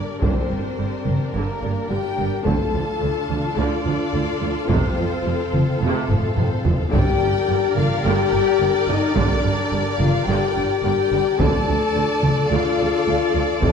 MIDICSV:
0, 0, Header, 1, 10, 480
1, 0, Start_track
1, 0, Key_signature, -2, "minor"
1, 0, Tempo, 558140
1, 196, Time_signature, 4, 2, 24, 8
1, 11799, End_track
2, 0, Start_track
2, 0, Title_t, "Violin section"
2, 0, Program_c, 0, 48
2, 0, Note_on_c, 0, 74, 78
2, 187, Note_on_c, 0, 72, 77
2, 195, Note_off_c, 0, 74, 0
2, 1135, Note_off_c, 0, 72, 0
2, 1157, Note_on_c, 0, 70, 73
2, 1629, Note_off_c, 0, 70, 0
2, 1638, Note_on_c, 0, 79, 78
2, 2110, Note_off_c, 0, 79, 0
2, 2115, Note_on_c, 0, 81, 85
2, 3060, Note_off_c, 0, 81, 0
2, 3082, Note_on_c, 0, 74, 86
2, 4041, Note_on_c, 0, 72, 83
2, 4043, Note_off_c, 0, 74, 0
2, 4983, Note_off_c, 0, 72, 0
2, 4996, Note_on_c, 0, 69, 85
2, 5470, Note_off_c, 0, 69, 0
2, 5477, Note_on_c, 0, 72, 77
2, 5720, Note_off_c, 0, 72, 0
2, 5956, Note_on_c, 0, 79, 104
2, 6645, Note_off_c, 0, 79, 0
2, 6678, Note_on_c, 0, 77, 94
2, 6915, Note_off_c, 0, 77, 0
2, 6927, Note_on_c, 0, 79, 99
2, 7637, Note_on_c, 0, 75, 84
2, 7644, Note_off_c, 0, 79, 0
2, 7879, Note_off_c, 0, 75, 0
2, 7881, Note_on_c, 0, 74, 85
2, 8586, Note_off_c, 0, 74, 0
2, 8600, Note_on_c, 0, 77, 90
2, 8830, Note_on_c, 0, 79, 91
2, 8840, Note_off_c, 0, 77, 0
2, 9306, Note_off_c, 0, 79, 0
2, 9316, Note_on_c, 0, 79, 97
2, 9788, Note_off_c, 0, 79, 0
2, 9803, Note_on_c, 0, 81, 104
2, 10751, Note_on_c, 0, 77, 95
2, 10760, Note_off_c, 0, 81, 0
2, 11695, Note_off_c, 0, 77, 0
2, 11713, Note_on_c, 0, 69, 72
2, 11799, Note_off_c, 0, 69, 0
2, 11799, End_track
3, 0, Start_track
3, 0, Title_t, "Violin section"
3, 0, Program_c, 1, 48
3, 0, Note_on_c, 1, 70, 78
3, 2083, Note_off_c, 1, 70, 0
3, 2118, Note_on_c, 1, 69, 65
3, 5927, Note_off_c, 1, 69, 0
3, 5964, Note_on_c, 1, 74, 73
3, 9786, Note_off_c, 1, 74, 0
3, 9797, Note_on_c, 1, 74, 76
3, 11799, Note_off_c, 1, 74, 0
3, 11799, End_track
4, 0, Start_track
4, 0, Title_t, "String section"
4, 0, Program_c, 2, 48
4, 0, Note_on_c, 2, 62, 80
4, 0, Note_on_c, 2, 67, 92
4, 0, Note_on_c, 2, 70, 84
4, 0, Note_on_c, 2, 74, 81
4, 2084, Note_off_c, 2, 74, 0
4, 2085, Note_off_c, 2, 67, 0
4, 2086, Note_off_c, 2, 62, 0
4, 2088, Note_off_c, 2, 70, 0
4, 2115, Note_on_c, 2, 65, 77
4, 2115, Note_on_c, 2, 69, 73
4, 2115, Note_on_c, 2, 77, 71
4, 2119, Note_on_c, 2, 62, 77
4, 4008, Note_off_c, 2, 62, 0
4, 4051, Note_on_c, 2, 60, 82
4, 5954, Note_on_c, 2, 62, 89
4, 5957, Note_on_c, 2, 74, 93
4, 5958, Note_on_c, 2, 70, 91
4, 5959, Note_on_c, 2, 67, 88
4, 5960, Note_off_c, 2, 65, 0
4, 5961, Note_off_c, 2, 69, 0
4, 5961, Note_off_c, 2, 77, 0
4, 5967, Note_off_c, 2, 60, 0
4, 9792, Note_off_c, 2, 62, 0
4, 9797, Note_off_c, 2, 67, 0
4, 9797, Note_off_c, 2, 70, 0
4, 9797, Note_off_c, 2, 74, 0
4, 9802, Note_on_c, 2, 69, 87
4, 9803, Note_on_c, 2, 62, 87
4, 9803, Note_on_c, 2, 65, 83
4, 9808, Note_on_c, 2, 74, 88
4, 11685, Note_off_c, 2, 62, 0
4, 11687, Note_off_c, 2, 74, 0
4, 11704, Note_on_c, 2, 60, 70
4, 11704, Note_on_c, 2, 77, 74
4, 11799, Note_off_c, 2, 60, 0
4, 11799, Note_off_c, 2, 65, 0
4, 11799, Note_off_c, 2, 69, 0
4, 11799, Note_off_c, 2, 77, 0
4, 11799, End_track
5, 0, Start_track
5, 0, Title_t, "French horn section"
5, 0, Program_c, 3, 60
5, 0, Note_on_c, 3, 62, 89
5, 169, Note_off_c, 3, 62, 0
5, 178, Note_on_c, 3, 60, 92
5, 1147, Note_on_c, 3, 58, 86
5, 1149, Note_off_c, 3, 60, 0
5, 1631, Note_on_c, 3, 67, 94
5, 1634, Note_off_c, 3, 58, 0
5, 2099, Note_on_c, 3, 69, 104
5, 2116, Note_off_c, 3, 67, 0
5, 3052, Note_off_c, 3, 69, 0
5, 3071, Note_on_c, 3, 62, 100
5, 4037, Note_off_c, 3, 62, 0
5, 4038, Note_on_c, 3, 60, 103
5, 4981, Note_off_c, 3, 60, 0
5, 4991, Note_on_c, 3, 57, 97
5, 5469, Note_on_c, 3, 60, 92
5, 5477, Note_off_c, 3, 57, 0
5, 5716, Note_off_c, 3, 60, 0
5, 5948, Note_on_c, 3, 67, 119
5, 6641, Note_off_c, 3, 67, 0
5, 6673, Note_on_c, 3, 65, 101
5, 6917, Note_on_c, 3, 67, 122
5, 6918, Note_off_c, 3, 65, 0
5, 7625, Note_off_c, 3, 67, 0
5, 7645, Note_on_c, 3, 63, 109
5, 7865, Note_on_c, 3, 62, 97
5, 7883, Note_off_c, 3, 63, 0
5, 8591, Note_on_c, 3, 65, 109
5, 8593, Note_off_c, 3, 62, 0
5, 8831, Note_off_c, 3, 65, 0
5, 8839, Note_on_c, 3, 67, 97
5, 9307, Note_off_c, 3, 67, 0
5, 9317, Note_on_c, 3, 67, 117
5, 9788, Note_off_c, 3, 67, 0
5, 9789, Note_on_c, 3, 69, 119
5, 10749, Note_on_c, 3, 65, 110
5, 10753, Note_off_c, 3, 69, 0
5, 11711, Note_on_c, 3, 57, 89
5, 11713, Note_off_c, 3, 65, 0
5, 11799, Note_off_c, 3, 57, 0
5, 11799, End_track
6, 0, Start_track
6, 0, Title_t, "Timpani"
6, 0, Program_c, 4, 47
6, 2114, Note_on_c, 4, 50, 79
6, 2804, Note_off_c, 4, 50, 0
6, 5962, Note_on_c, 4, 43, 77
6, 6648, Note_off_c, 4, 43, 0
6, 9801, Note_on_c, 4, 50, 85
6, 10485, Note_off_c, 4, 50, 0
6, 11799, End_track
7, 0, Start_track
7, 0, Title_t, "Viola section"
7, 0, Program_c, 5, 48
7, 0, Note_on_c, 5, 62, 77
7, 204, Note_on_c, 5, 50, 67
7, 424, Note_off_c, 5, 50, 0
7, 442, Note_on_c, 5, 55, 39
7, 511, Note_off_c, 5, 55, 0
7, 674, Note_on_c, 5, 50, 47
7, 743, Note_off_c, 5, 50, 0
7, 912, Note_on_c, 5, 55, 47
7, 981, Note_off_c, 5, 55, 0
7, 1159, Note_on_c, 5, 50, 62
7, 1383, Note_off_c, 5, 50, 0
7, 1390, Note_on_c, 5, 55, 48
7, 1459, Note_off_c, 5, 55, 0
7, 1626, Note_on_c, 5, 50, 60
7, 1695, Note_off_c, 5, 50, 0
7, 1867, Note_on_c, 5, 55, 57
7, 1936, Note_off_c, 5, 55, 0
7, 2081, Note_off_c, 5, 62, 0
7, 2098, Note_on_c, 5, 65, 67
7, 2099, Note_on_c, 5, 50, 73
7, 2333, Note_off_c, 5, 50, 0
7, 2351, Note_on_c, 5, 53, 49
7, 2420, Note_off_c, 5, 53, 0
7, 2595, Note_on_c, 5, 50, 53
7, 2664, Note_off_c, 5, 50, 0
7, 2843, Note_on_c, 5, 53, 52
7, 2912, Note_off_c, 5, 53, 0
7, 3077, Note_on_c, 5, 50, 72
7, 3303, Note_off_c, 5, 50, 0
7, 3314, Note_on_c, 5, 53, 62
7, 3383, Note_off_c, 5, 53, 0
7, 3562, Note_on_c, 5, 50, 65
7, 3630, Note_off_c, 5, 50, 0
7, 3797, Note_on_c, 5, 53, 57
7, 3866, Note_off_c, 5, 53, 0
7, 4043, Note_on_c, 5, 48, 85
7, 4266, Note_off_c, 5, 48, 0
7, 4282, Note_on_c, 5, 53, 52
7, 4351, Note_off_c, 5, 53, 0
7, 4521, Note_on_c, 5, 48, 58
7, 4590, Note_off_c, 5, 48, 0
7, 4769, Note_on_c, 5, 53, 61
7, 4838, Note_off_c, 5, 53, 0
7, 5016, Note_on_c, 5, 48, 92
7, 5234, Note_off_c, 5, 48, 0
7, 5245, Note_on_c, 5, 53, 67
7, 5314, Note_off_c, 5, 53, 0
7, 5485, Note_on_c, 5, 48, 62
7, 5554, Note_off_c, 5, 48, 0
7, 5726, Note_on_c, 5, 53, 69
7, 5795, Note_off_c, 5, 53, 0
7, 5952, Note_off_c, 5, 65, 0
7, 5966, Note_on_c, 5, 50, 89
7, 5968, Note_on_c, 5, 70, 82
7, 6182, Note_off_c, 5, 50, 0
7, 6192, Note_on_c, 5, 50, 64
7, 6261, Note_off_c, 5, 50, 0
7, 6439, Note_on_c, 5, 50, 62
7, 6508, Note_off_c, 5, 50, 0
7, 6684, Note_on_c, 5, 50, 63
7, 6753, Note_off_c, 5, 50, 0
7, 6920, Note_on_c, 5, 50, 91
7, 7144, Note_off_c, 5, 50, 0
7, 7161, Note_on_c, 5, 50, 70
7, 7230, Note_off_c, 5, 50, 0
7, 7412, Note_on_c, 5, 50, 66
7, 7481, Note_off_c, 5, 50, 0
7, 7649, Note_on_c, 5, 50, 70
7, 7717, Note_off_c, 5, 50, 0
7, 7889, Note_on_c, 5, 50, 86
7, 8108, Note_off_c, 5, 50, 0
7, 8136, Note_on_c, 5, 50, 57
7, 8205, Note_off_c, 5, 50, 0
7, 8381, Note_on_c, 5, 50, 58
7, 8450, Note_off_c, 5, 50, 0
7, 8616, Note_on_c, 5, 50, 60
7, 8685, Note_off_c, 5, 50, 0
7, 8852, Note_on_c, 5, 50, 83
7, 9070, Note_off_c, 5, 50, 0
7, 9089, Note_on_c, 5, 50, 59
7, 9158, Note_off_c, 5, 50, 0
7, 9322, Note_on_c, 5, 50, 74
7, 9391, Note_off_c, 5, 50, 0
7, 9567, Note_on_c, 5, 50, 70
7, 9636, Note_off_c, 5, 50, 0
7, 9767, Note_off_c, 5, 70, 0
7, 9805, Note_on_c, 5, 50, 82
7, 9809, Note_on_c, 5, 69, 84
7, 10025, Note_off_c, 5, 50, 0
7, 10051, Note_on_c, 5, 53, 50
7, 10120, Note_off_c, 5, 53, 0
7, 10286, Note_on_c, 5, 50, 55
7, 10355, Note_off_c, 5, 50, 0
7, 10534, Note_on_c, 5, 53, 55
7, 10603, Note_off_c, 5, 53, 0
7, 10764, Note_on_c, 5, 50, 74
7, 10984, Note_off_c, 5, 50, 0
7, 11012, Note_on_c, 5, 53, 52
7, 11081, Note_off_c, 5, 53, 0
7, 11247, Note_on_c, 5, 50, 59
7, 11316, Note_off_c, 5, 50, 0
7, 11488, Note_on_c, 5, 53, 61
7, 11556, Note_off_c, 5, 53, 0
7, 11720, Note_on_c, 5, 48, 79
7, 11799, Note_off_c, 5, 48, 0
7, 11799, Note_off_c, 5, 69, 0
7, 11799, End_track
8, 0, Start_track
8, 0, Title_t, "Cello section"
8, 0, Program_c, 6, 48
8, 194, Note_on_c, 6, 43, 68
8, 262, Note_off_c, 6, 43, 0
8, 434, Note_on_c, 6, 43, 47
8, 502, Note_off_c, 6, 43, 0
8, 676, Note_on_c, 6, 43, 48
8, 745, Note_off_c, 6, 43, 0
8, 917, Note_on_c, 6, 43, 52
8, 986, Note_off_c, 6, 43, 0
8, 1158, Note_on_c, 6, 43, 70
8, 1227, Note_off_c, 6, 43, 0
8, 1401, Note_on_c, 6, 43, 55
8, 1469, Note_off_c, 6, 43, 0
8, 1633, Note_on_c, 6, 43, 50
8, 1702, Note_off_c, 6, 43, 0
8, 1875, Note_on_c, 6, 43, 53
8, 1944, Note_off_c, 6, 43, 0
8, 2109, Note_on_c, 6, 38, 74
8, 2178, Note_off_c, 6, 38, 0
8, 2350, Note_on_c, 6, 38, 55
8, 2418, Note_off_c, 6, 38, 0
8, 2598, Note_on_c, 6, 38, 56
8, 2667, Note_off_c, 6, 38, 0
8, 2835, Note_on_c, 6, 38, 51
8, 2903, Note_off_c, 6, 38, 0
8, 3074, Note_on_c, 6, 38, 84
8, 3142, Note_off_c, 6, 38, 0
8, 3317, Note_on_c, 6, 38, 57
8, 3386, Note_off_c, 6, 38, 0
8, 3553, Note_on_c, 6, 38, 61
8, 3622, Note_off_c, 6, 38, 0
8, 3799, Note_on_c, 6, 38, 57
8, 3867, Note_off_c, 6, 38, 0
8, 4039, Note_on_c, 6, 41, 81
8, 4108, Note_off_c, 6, 41, 0
8, 4282, Note_on_c, 6, 41, 60
8, 4351, Note_off_c, 6, 41, 0
8, 4522, Note_on_c, 6, 41, 66
8, 4591, Note_off_c, 6, 41, 0
8, 4760, Note_on_c, 6, 41, 59
8, 4829, Note_off_c, 6, 41, 0
8, 5004, Note_on_c, 6, 41, 81
8, 5073, Note_off_c, 6, 41, 0
8, 5244, Note_on_c, 6, 41, 57
8, 5313, Note_off_c, 6, 41, 0
8, 5479, Note_on_c, 6, 41, 67
8, 5548, Note_off_c, 6, 41, 0
8, 5726, Note_on_c, 6, 41, 59
8, 5795, Note_off_c, 6, 41, 0
8, 5960, Note_on_c, 6, 43, 90
8, 6029, Note_off_c, 6, 43, 0
8, 6201, Note_on_c, 6, 43, 62
8, 6270, Note_off_c, 6, 43, 0
8, 6440, Note_on_c, 6, 43, 65
8, 6509, Note_off_c, 6, 43, 0
8, 6680, Note_on_c, 6, 43, 64
8, 6749, Note_off_c, 6, 43, 0
8, 6922, Note_on_c, 6, 43, 88
8, 6991, Note_off_c, 6, 43, 0
8, 7160, Note_on_c, 6, 43, 65
8, 7229, Note_off_c, 6, 43, 0
8, 7404, Note_on_c, 6, 43, 69
8, 7472, Note_off_c, 6, 43, 0
8, 7640, Note_on_c, 6, 43, 60
8, 7709, Note_off_c, 6, 43, 0
8, 7876, Note_on_c, 6, 43, 93
8, 7945, Note_off_c, 6, 43, 0
8, 8116, Note_on_c, 6, 43, 65
8, 8185, Note_off_c, 6, 43, 0
8, 8360, Note_on_c, 6, 43, 66
8, 8429, Note_off_c, 6, 43, 0
8, 8594, Note_on_c, 6, 43, 66
8, 8663, Note_off_c, 6, 43, 0
8, 8840, Note_on_c, 6, 43, 94
8, 8909, Note_off_c, 6, 43, 0
8, 9081, Note_on_c, 6, 43, 61
8, 9149, Note_off_c, 6, 43, 0
8, 9322, Note_on_c, 6, 43, 64
8, 9390, Note_off_c, 6, 43, 0
8, 9558, Note_on_c, 6, 43, 61
8, 9627, Note_off_c, 6, 43, 0
8, 9798, Note_on_c, 6, 38, 88
8, 9867, Note_off_c, 6, 38, 0
8, 10039, Note_on_c, 6, 38, 60
8, 10108, Note_off_c, 6, 38, 0
8, 10278, Note_on_c, 6, 38, 61
8, 10346, Note_off_c, 6, 38, 0
8, 10516, Note_on_c, 6, 38, 60
8, 10585, Note_off_c, 6, 38, 0
8, 10760, Note_on_c, 6, 38, 79
8, 10829, Note_off_c, 6, 38, 0
8, 11003, Note_on_c, 6, 38, 55
8, 11072, Note_off_c, 6, 38, 0
8, 11239, Note_on_c, 6, 38, 59
8, 11308, Note_off_c, 6, 38, 0
8, 11478, Note_on_c, 6, 38, 50
8, 11547, Note_off_c, 6, 38, 0
8, 11716, Note_on_c, 6, 41, 75
8, 11784, Note_off_c, 6, 41, 0
8, 11799, End_track
9, 0, Start_track
9, 0, Title_t, "Double bass section"
9, 0, Program_c, 7, 48
9, 200, Note_on_c, 7, 31, 65
9, 269, Note_off_c, 7, 31, 0
9, 442, Note_on_c, 7, 31, 48
9, 511, Note_off_c, 7, 31, 0
9, 681, Note_on_c, 7, 31, 47
9, 750, Note_off_c, 7, 31, 0
9, 922, Note_on_c, 7, 31, 48
9, 991, Note_off_c, 7, 31, 0
9, 1158, Note_on_c, 7, 31, 73
9, 1227, Note_off_c, 7, 31, 0
9, 1398, Note_on_c, 7, 31, 53
9, 1467, Note_off_c, 7, 31, 0
9, 1637, Note_on_c, 7, 31, 58
9, 1706, Note_off_c, 7, 31, 0
9, 1879, Note_on_c, 7, 31, 56
9, 1947, Note_off_c, 7, 31, 0
9, 2116, Note_on_c, 7, 38, 71
9, 2185, Note_off_c, 7, 38, 0
9, 2358, Note_on_c, 7, 38, 56
9, 2427, Note_off_c, 7, 38, 0
9, 2597, Note_on_c, 7, 38, 49
9, 2666, Note_off_c, 7, 38, 0
9, 2834, Note_on_c, 7, 38, 55
9, 2903, Note_off_c, 7, 38, 0
9, 3072, Note_on_c, 7, 38, 77
9, 3141, Note_off_c, 7, 38, 0
9, 3320, Note_on_c, 7, 38, 54
9, 3389, Note_off_c, 7, 38, 0
9, 3555, Note_on_c, 7, 38, 64
9, 3624, Note_off_c, 7, 38, 0
9, 3800, Note_on_c, 7, 38, 55
9, 3869, Note_off_c, 7, 38, 0
9, 4038, Note_on_c, 7, 29, 81
9, 4107, Note_off_c, 7, 29, 0
9, 4278, Note_on_c, 7, 29, 58
9, 4346, Note_off_c, 7, 29, 0
9, 4517, Note_on_c, 7, 29, 55
9, 4586, Note_off_c, 7, 29, 0
9, 4762, Note_on_c, 7, 29, 60
9, 4831, Note_off_c, 7, 29, 0
9, 5005, Note_on_c, 7, 29, 83
9, 5074, Note_off_c, 7, 29, 0
9, 5241, Note_on_c, 7, 29, 62
9, 5310, Note_off_c, 7, 29, 0
9, 5481, Note_on_c, 7, 29, 67
9, 5550, Note_off_c, 7, 29, 0
9, 5725, Note_on_c, 7, 29, 59
9, 5794, Note_off_c, 7, 29, 0
9, 5962, Note_on_c, 7, 31, 86
9, 6031, Note_off_c, 7, 31, 0
9, 6202, Note_on_c, 7, 31, 66
9, 6270, Note_off_c, 7, 31, 0
9, 6439, Note_on_c, 7, 31, 64
9, 6508, Note_off_c, 7, 31, 0
9, 6684, Note_on_c, 7, 31, 68
9, 6753, Note_off_c, 7, 31, 0
9, 6920, Note_on_c, 7, 31, 83
9, 6989, Note_off_c, 7, 31, 0
9, 7160, Note_on_c, 7, 31, 64
9, 7228, Note_off_c, 7, 31, 0
9, 7401, Note_on_c, 7, 31, 68
9, 7470, Note_off_c, 7, 31, 0
9, 7639, Note_on_c, 7, 31, 68
9, 7708, Note_off_c, 7, 31, 0
9, 7882, Note_on_c, 7, 31, 87
9, 7951, Note_off_c, 7, 31, 0
9, 8125, Note_on_c, 7, 31, 68
9, 8194, Note_off_c, 7, 31, 0
9, 8361, Note_on_c, 7, 31, 63
9, 8430, Note_off_c, 7, 31, 0
9, 8603, Note_on_c, 7, 31, 65
9, 8672, Note_off_c, 7, 31, 0
9, 8841, Note_on_c, 7, 31, 83
9, 8910, Note_off_c, 7, 31, 0
9, 9085, Note_on_c, 7, 31, 66
9, 9153, Note_off_c, 7, 31, 0
9, 9323, Note_on_c, 7, 31, 65
9, 9392, Note_off_c, 7, 31, 0
9, 9562, Note_on_c, 7, 31, 64
9, 9631, Note_off_c, 7, 31, 0
9, 9799, Note_on_c, 7, 38, 78
9, 9868, Note_off_c, 7, 38, 0
9, 10043, Note_on_c, 7, 38, 61
9, 10112, Note_off_c, 7, 38, 0
9, 10286, Note_on_c, 7, 38, 58
9, 10354, Note_off_c, 7, 38, 0
9, 10523, Note_on_c, 7, 38, 57
9, 10592, Note_off_c, 7, 38, 0
9, 10757, Note_on_c, 7, 38, 80
9, 10825, Note_off_c, 7, 38, 0
9, 11004, Note_on_c, 7, 38, 55
9, 11073, Note_off_c, 7, 38, 0
9, 11247, Note_on_c, 7, 38, 57
9, 11316, Note_off_c, 7, 38, 0
9, 11484, Note_on_c, 7, 38, 55
9, 11553, Note_off_c, 7, 38, 0
9, 11722, Note_on_c, 7, 29, 70
9, 11791, Note_off_c, 7, 29, 0
9, 11799, End_track
10, 0, Start_track
10, 0, Title_t, "Taiko and cinematic ensemble drums"
10, 189, Note_on_c, 9, 41, 85
10, 275, Note_off_c, 9, 41, 0
10, 911, Note_on_c, 9, 47, 44
10, 997, Note_off_c, 9, 47, 0
10, 2117, Note_on_c, 9, 41, 89
10, 2203, Note_off_c, 9, 41, 0
10, 2840, Note_on_c, 9, 47, 45
10, 2926, Note_off_c, 9, 47, 0
10, 4038, Note_on_c, 9, 41, 92
10, 4124, Note_off_c, 9, 41, 0
10, 4762, Note_on_c, 9, 47, 49
10, 4848, Note_off_c, 9, 47, 0
10, 5242, Note_on_c, 9, 45, 75
10, 5328, Note_off_c, 9, 45, 0
10, 5481, Note_on_c, 9, 45, 94
10, 5567, Note_off_c, 9, 45, 0
10, 5722, Note_on_c, 9, 43, 99
10, 5808, Note_off_c, 9, 43, 0
10, 5963, Note_on_c, 9, 41, 99
10, 6049, Note_off_c, 9, 41, 0
10, 6685, Note_on_c, 9, 47, 48
10, 6771, Note_off_c, 9, 47, 0
10, 7880, Note_on_c, 9, 41, 99
10, 7966, Note_off_c, 9, 41, 0
10, 8600, Note_on_c, 9, 47, 50
10, 8686, Note_off_c, 9, 47, 0
10, 9798, Note_on_c, 9, 41, 101
10, 9884, Note_off_c, 9, 41, 0
10, 10518, Note_on_c, 9, 47, 49
10, 10604, Note_off_c, 9, 47, 0
10, 11714, Note_on_c, 9, 41, 90
10, 11799, Note_off_c, 9, 41, 0
10, 11799, End_track
0, 0, End_of_file